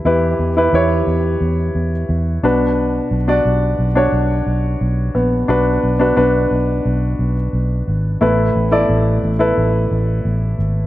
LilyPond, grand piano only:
<<
  \new Staff \with { instrumentName = "Grand piano" } { \time 4/4 \key b \minor \tempo 4 = 88 <e' g' b'>8. <e' g' b'>16 <e' g' cis''>4.~ <e' g' cis''>16 r8. <d' fis' b'>8~ | <d' fis' b'>8 r16 <d' fis' d''>8. r16 <d' fis' cis''>4.~ <d' fis' cis''>16 r8 | <d' fis' b'>8. <d' fis' b'>16 <d' fis' b'>4.~ <d' fis' b'>16 r4 r16 | <e' a' b'>8. <e' a' d''>8. r16 <e' a' b'>4.~ <e' a' b'>16 r8 | }
  \new Staff \with { instrumentName = "Grand piano" } { \clef bass \time 4/4 \key b \minor e4. r2 b,8~ | b,4 r2 r8 b8~ | b4 r2. | a,4. r2 r8 | }
>>